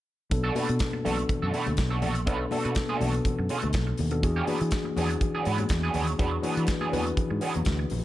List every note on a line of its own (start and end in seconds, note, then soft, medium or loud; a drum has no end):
0.30 0.50 B1 loud
0.30 0.48 B2 medium
0.30 0.49 B3 medium
0.30 0.49 D4 medium
0.30 0.49 A4 medium
0.30 muted clean electric guitar stroke soft
0.30 kick loud
0.30 closed hi-hat medium
0.30 muted conga soft
0.44 0.54 A3 medium
0.44 0.54 D4 medium
0.44 0.55 F#4 medium
0.44 0.56 A4 medium
0.55 0.90 B2 medium
0.55 0.70 A3 medium
0.55 0.90 B3 medium
0.55 0.69 D4 medium
0.55 0.91 D4 medium
0.55 0.68 F#4 medium
0.55 0.91 A4 loud
0.55 0.69 B4 medium
0.55 open hi-hat medium
0.55 high conga medium
0.69 0.78 B2 medium
0.69 muted clean electric guitar stroke soft
0.69 closed hi-hat soft
0.79 kick loud
0.79 snare loud
0.79 clap medium
0.79 closed hi-hat medium
0.93 muted clean electric guitar stroke medium
0.93 high conga medium
1.04 1.23 B1 medium
1.04 1.73 B2 medium
1.04 1.22 A3 medium
1.04 1.73 B3 medium
1.04 1.73 D4 medium
1.04 1.18 D4 medium
1.04 1.17 F#4 medium
1.04 1.73 A4 medium
1.04 1.17 A4 medium
1.04 open hi-hat medium
1.04 high conga medium
1.04 low conga medium
1.18 muted clean electric guitar stroke soft
1.18 closed hi-hat soft
1.29 muted clean electric guitar stroke soft
1.29 kick loud
1.29 closed hi-hat medium
1.29 low conga medium
1.42 1.51 F#2 medium
1.42 1.53 A3 medium
1.42 1.53 D4 medium
1.42 1.53 F#4 medium
1.42 1.55 A4 medium
1.54 1.71 A3 medium
1.54 1.66 D4 medium
1.54 1.65 F#4 medium
1.54 1.66 B4 medium
1.54 open hi-hat medium
1.54 muted conga soft
1.66 1.76 D2 medium
1.66 muted clean electric guitar stroke soft
1.66 closed hi-hat soft
1.66 high conga medium
1.77 2.03 B1 medium
1.77 muted clean electric guitar stroke soft
1.77 kick loud
1.77 snare loud
1.77 clap medium
1.77 closed hi-hat medium
1.77 muted conga soft
1.90 2.01 A3 soft
1.90 2.01 D4 medium
1.90 2.01 F#4 medium
1.90 2.02 A4 medium
2.02 2.27 A#1 medium
2.02 2.20 A3 medium
2.02 2.15 D4 medium
2.02 2.15 F#4 loud
2.02 2.14 A4 medium
2.02 open hi-hat medium
2.02 muted conga soft
2.02 high conga medium
2.02 low conga medium
2.15 muted clean electric guitar stroke soft
2.15 closed hi-hat soft
2.26 2.45 B1 loud
2.26 2.44 B2 medium
2.26 2.44 A3 medium
2.26 2.45 B3 medium
2.26 2.39 D4 medium
2.26 2.45 D4 medium
2.26 2.39 F#4 medium
2.26 2.45 A4 medium
2.26 2.39 B4 medium
2.26 kick loud
2.26 closed hi-hat medium
2.26 muted conga soft
2.40 muted clean electric guitar stroke soft
2.50 2.86 B2 medium
2.50 2.65 A3 medium
2.50 2.86 B3 medium
2.50 2.86 D4 medium
2.50 2.64 D4 medium
2.50 2.64 F#4 medium
2.50 2.86 A4 loud
2.50 2.64 A4 medium
2.50 open hi-hat medium
2.50 muted conga soft
2.50 high conga medium
2.65 2.74 B2 medium
2.65 2.75 A3 soft
2.65 2.75 D4 soft
2.65 2.76 F#4 medium
2.65 2.77 B4 medium
2.65 closed hi-hat soft
2.75 muted clean electric guitar stroke soft
2.75 kick loud
2.75 snare loud
2.75 clap loud
2.75 closed hi-hat medium
2.75 muted conga soft
2.88 3.00 A3 medium
2.88 3.00 D4 medium
2.88 3.01 F#4 medium
2.88 3.01 A4 medium
2.88 high conga medium
3.00 3.19 B1 medium
3.00 3.69 B2 medium
3.00 3.15 A3 medium
3.00 3.69 B3 medium
3.00 3.69 D4 medium
3.00 3.14 D4 medium
3.00 3.13 F#4 medium
3.00 3.69 A4 medium
3.00 3.13 A4 medium
3.00 open hi-hat medium
3.00 muted conga soft
3.00 high conga medium
3.00 low conga medium
3.14 muted clean electric guitar stroke soft
3.14 closed hi-hat soft
3.25 muted clean electric guitar stroke soft
3.25 kick medium
3.25 closed hi-hat medium
3.25 muted conga soft
3.25 low conga medium
3.39 3.47 F#2 medium
3.39 muted clean electric guitar stroke soft
3.49 3.70 A3 medium
3.49 3.63 D4 medium
3.49 3.62 F#4 medium
3.49 3.62 A4 medium
3.49 open hi-hat medium
3.49 muted conga soft
3.62 3.72 D2 medium
3.62 muted clean electric guitar stroke soft
3.62 closed hi-hat soft
3.62 high conga medium
3.73 3.92 B1 medium
3.73 muted clean electric guitar stroke soft
3.73 kick loud
3.73 snare loud
3.73 clap medium
3.73 closed hi-hat medium
3.73 muted conga soft
3.87 muted clean electric guitar stroke soft
3.97 4.24 D#2 medium
3.97 open hi-hat medium
3.97 muted conga soft
3.97 high conga medium
3.97 low conga medium
4.10 4.19 B2 medium
4.10 4.19 B3 medium
4.10 4.20 D4 medium
4.10 4.20 A4 medium
4.10 muted clean electric guitar stroke soft
4.10 closed hi-hat soft
4.22 4.42 E2 loud
4.22 4.40 E3 medium
4.22 4.41 D4 medium
4.22 4.41 F#4 medium
4.22 4.41 G#4 loud
4.22 muted clean electric guitar stroke soft
4.22 kick loud
4.22 closed hi-hat medium
4.22 muted conga soft
4.36 4.46 F#3 medium
4.36 4.47 B3 medium
4.36 4.47 D4 medium
4.36 4.48 G#4 medium
4.47 4.82 E3 medium
4.47 4.62 F#3 medium
4.47 4.60 B3 medium
4.47 4.82 D4 medium
4.47 4.59 D4 medium
4.47 4.82 F#4 medium
4.47 4.83 G#4 loud
4.47 4.60 B4 medium
4.47 open hi-hat medium
4.47 high conga medium
4.60 4.70 E3 loud
4.60 muted clean electric guitar stroke soft
4.60 closed hi-hat soft
4.71 kick loud
4.71 snare loud
4.71 clap medium
4.71 closed hi-hat medium
4.71 muted conga soft
4.84 muted clean electric guitar stroke soft
4.84 high conga medium
4.96 5.15 E2 medium
4.96 5.65 E3 medium
4.96 5.14 F#3 medium
4.96 5.10 B3 medium
4.96 5.65 D4 medium
4.96 5.10 D4 loud
4.96 5.65 F#4 medium
4.96 5.65 G#4 medium
4.96 5.09 G#4 medium
4.96 open hi-hat medium
4.96 high conga medium
4.96 low conga medium
5.10 muted clean electric guitar stroke soft
5.10 closed hi-hat soft
5.21 muted clean electric guitar stroke soft
5.21 kick medium
5.21 closed hi-hat medium
5.21 muted conga soft
5.21 low conga medium
5.35 5.44 F#3 medium
5.35 5.45 B3 medium
5.35 5.45 D4 medium
5.35 5.47 G#4 medium
5.45 5.64 G#2 medium
5.45 5.63 F#3 medium
5.45 5.59 B3 medium
5.45 5.58 D4 medium
5.45 5.59 B4 medium
5.45 open hi-hat medium
5.58 muted clean electric guitar stroke soft
5.58 closed hi-hat soft
5.58 high conga medium
5.69 5.88 E2 loud
5.69 muted clean electric guitar stroke soft
5.69 kick loud
5.69 snare loud
5.69 clap medium
5.69 closed hi-hat medium
5.83 5.93 F#3 medium
5.83 5.94 B3 medium
5.83 5.94 D4 medium
5.83 5.94 G#4 medium
5.94 6.13 D#2 medium
5.94 6.12 F#3 medium
5.94 6.07 B3 medium
5.94 6.07 D4 medium
5.94 6.07 G#4 medium
5.94 open hi-hat medium
5.94 high conga medium
5.94 low conga medium
6.07 muted clean electric guitar stroke soft
6.07 closed hi-hat soft
6.18 6.37 E2 loud
6.18 6.36 E3 medium
6.18 6.37 F#3 medium
6.18 6.32 B3 medium
6.18 6.36 D4 medium
6.18 6.31 D4 medium
6.18 6.37 F#4 medium
6.18 6.37 G#4 medium
6.18 6.31 B4 loud
6.18 kick loud
6.18 closed hi-hat medium
6.18 muted conga soft
6.32 muted clean electric guitar stroke soft
6.42 6.78 E3 medium
6.42 6.56 F#3 medium
6.42 6.56 B3 medium
6.42 6.78 D4 medium
6.42 6.56 D4 medium
6.42 6.78 F#4 medium
6.42 6.56 G#4 medium
6.42 6.78 B4 medium
6.42 open hi-hat medium
6.42 high conga medium
6.57 6.65 E3 medium
6.57 6.67 F#3 soft
6.57 6.67 B3 soft
6.57 6.68 D4 medium
6.57 6.69 B4 medium
6.57 closed hi-hat soft
6.67 muted clean electric guitar stroke soft
6.67 kick loud
6.67 snare loud
6.67 clap medium
6.67 closed hi-hat medium
6.67 muted conga soft
6.81 6.92 F#3 medium
6.81 6.92 B3 medium
6.81 6.92 D4 medium
6.81 6.93 G#4 medium
6.81 high conga medium
6.92 7.11 E2 medium
6.92 7.61 E3 medium
6.92 7.07 F#3 medium
6.92 7.05 B3 medium
6.92 7.61 D4 medium
6.92 7.05 D4 medium
6.92 7.61 F#4 medium
6.92 7.05 G#4 medium
6.92 7.61 B4 medium
6.92 open hi-hat medium
6.92 muted conga soft
6.92 high conga medium
6.92 low conga medium
7.06 muted clean electric guitar stroke soft
7.06 closed hi-hat soft
7.17 muted clean electric guitar stroke soft
7.17 kick medium
7.17 closed hi-hat medium
7.17 muted conga soft
7.17 low conga medium
7.30 7.39 G#2 medium
7.30 muted clean electric guitar stroke soft
7.41 7.59 F#3 medium
7.41 7.54 B3 medium
7.41 7.54 D4 medium
7.41 7.53 G#4 medium
7.41 open hi-hat medium
7.41 muted conga soft
7.54 7.64 E2 medium
7.54 muted clean electric guitar stroke soft
7.54 closed hi-hat soft
7.54 high conga medium
7.65 7.84 D2 medium
7.65 muted clean electric guitar stroke soft
7.65 kick loud
7.65 snare loud
7.65 clap medium
7.65 closed hi-hat medium
7.65 muted conga soft
7.79 muted clean electric guitar stroke soft
7.90 8.04 A#1 medium
7.90 open hi-hat medium
7.90 muted conga soft
7.90 high conga medium
7.90 low conga medium